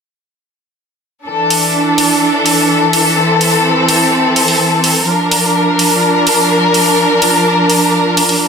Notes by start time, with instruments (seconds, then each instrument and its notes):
1.27 string section E3 D4 A4
1.50 open hi-hat
1.98 open hi-hat
2.46 open hi-hat
2.93 open hi-hat
3.17 string section C4
3.41 open hi-hat
3.89 open hi-hat
4.36 open hi-hat
4.48 open hi-hat
4.84 open hi-hat
5.07 string section F3 D4 A#4
5.31 open hi-hat
5.79 open hi-hat
6.27 open hi-hat
6.74 open hi-hat
7.22 open hi-hat
7.70 open hi-hat
8.17 open hi-hat
8.29 open hi-hat